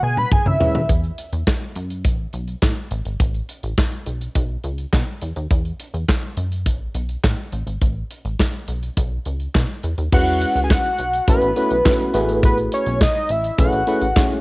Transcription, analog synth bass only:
0.03 B2
0.46 C#3
0.75 D#2
0.89 E2
1.33 E2
1.76 F#2
2.05 A1
2.34 B1
2.62 A2
2.91 A1
3.06 G#1
3.20 A1
3.63 A1
4.06 B1
4.35 B1
4.64 C#2
4.93 B2
5.22 E2
5.36 D#2
5.51 E2
5.94 E2
6.37 F#2
6.66 A1
6.95 B1
7.24 A2
7.52 A1
7.67 G#1
7.82 A1
8.25 A1
8.68 B1
8.97 B1
9.26 C#2
9.55 B2
9.84 E2
9.98 D#2
10.12 E2
10.56 C#2
10.99 B1
11.28 A1
11.42 A1
11.71 B1
12.14 A1
12.86 B1
13.29 A1
13.59 B1
13.73 A1
14.02 A1

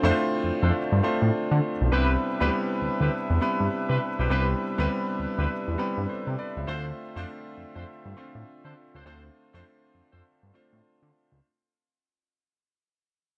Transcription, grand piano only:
Already playing: A3 C4 D4 F4 C5
0.03 A3 C4 D4 E4 C5
0.11 F4
1.03 A3 C4 D4 F4 C5
1.92 G3 B3 C4 E4 B4
2.41 G3 B3 C4 E4 B4
3.41 G3 B3 C4 E4 B4
4.30 G3 B3 C4 E4 B4
4.78 G3 B3 C4 E4 B4
5.78 G3 B3 C4 E4 B4
6.09 A4 C5
6.39 B4 D5
6.57 C5 E5
6.67 A3 C4 D4 F4 C5
7.16 A3 C4 D4 F4 C5
8.17 A3 C4 D4 F4 C5
9.06 A3 C4 D4 F4 C5
9.54 A3 C4 D4 F4 C5
10.54 A3 C4 D4 F4 C5

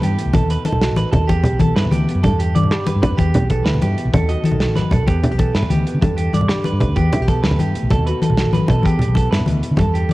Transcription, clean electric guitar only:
0.03 G4
0.34 A4
0.50 B4
0.66 A4
0.97 B4
1.12 A4
1.28 G4
1.60 A4
1.76 B4
1.91 G4
2.23 A4
2.39 G4
2.55 D5
2.87 B4
3.02 B4
3.17 G4
3.50 A4
3.65 B4
3.82 G4
4.14 A4
4.29 D#5
4.45 A4
4.76 B4
4.91 A4
5.07 G4
5.38 A4
5.55 B4
5.70 G4
6.01 A4
6.17 G4
6.34 D5
6.65 B4
6.80 B4
6.96 G4
7.28 A4
7.43 B4
7.59 G4
7.90 A4
8.06 B4
8.22 A4
8.53 B4
8.70 A4
8.85 G4
9.15 A4
9.31 B4
9.47 muted clean electric guitar stroke
9.79 A4
9.94 G4

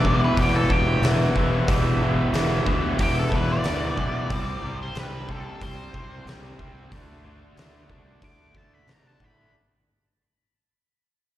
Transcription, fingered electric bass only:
Already playing: E1
0.38 E1
0.70 E1
1.02 E1
1.36 E1
1.68 E1
2.33 E1
2.66 D2
2.99 E1
3.32 E1
3.64 D2
3.98 B1
4.30 C2
4.62 C2
4.96 C2
5.61 C2
5.94 C2
6.25 C2
6.59 C2
6.91 D2
7.57 D2
7.89 C2
8.22 D2
8.55 D2
8.87 C3
9.20 A2

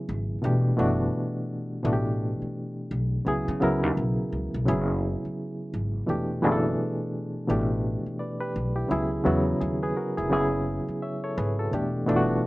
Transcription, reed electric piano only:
Already playing: C#3 F#3 B3 E4 G#4
0.42 B2 E3 A3 D4 G4
0.77 B2 E3 A3 D4 F#4
1.83 B2 E3 A3 D4 F#4
1.93 G4
3.25 C#3 F#3 B3 E4 G#4
3.60 C#3 F#3 B3 E4 A#4
4.66 C#3 F#3 B3 E4 G#4
6.06 B2 E3 A3 D4 G4
6.42 B2 E3 A3 D4 G#4
6.52 A4
7.47 B2 E3 A3 D4 G4
8.19 B4 D5
8.41 G4 B4
8.76 E4 G4
8.88 C#3 F#3 B3 E4 G#4
9.24 C#3 F#3 B3 E4 F#4
9.61 E4 G#4
9.83 G#4 B4
9.96 F#4 A#4
10.17 E4 G#4
10.29 C#3 F#3 B3 E4 G#4
11.02 C#5 E5
11.24 A4 C#5
11.38 G#4 B4
11.59 F#4 A4
11.71 B2 E3 A3 D4 G4
12.06 B2 E3 A3 D4 F4
12.16 F#4

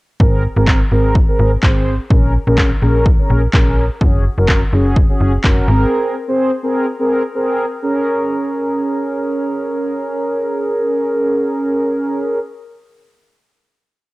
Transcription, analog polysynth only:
0.20 C4 G#4 A#4
0.56 C4 G#4 A#4
0.91 C4 G#4 A#4
1.28 C4 G#4 A#4
1.63 C4 G#4 C5
2.10 C#4 G#4 A#4
2.47 C#4 G#4 A#4
2.82 C#4 G#4 A#4
3.18 C#4 G#4 A#4
3.53 C#4 G#4 A#4
4.01 C#4 F#4 G#4
4.38 C#4 F#4 A#4
4.72 C#4 F#4 G#4
5.09 C#4 F#4 G#4
5.44 C#4 F#4 A#4
5.68 C4 G#4 A#4
6.28 C4 G#4 C5
6.63 C4 G#4 A#4
6.99 C4 G#4 A#4
7.34 C4 G#4 A#4
7.82 C#4 G#4 A#4

